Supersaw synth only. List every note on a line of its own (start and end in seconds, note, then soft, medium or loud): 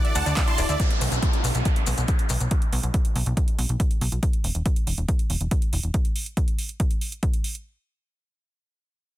0.05 0.14 D5 medium
0.15 0.25 F#5 medium
0.15 0.25 A5 loud
0.26 0.36 D5 medium
0.47 0.57 A5 medium
0.47 0.57 C6 loud
0.58 0.68 D5 medium
0.69 0.78 D5 medium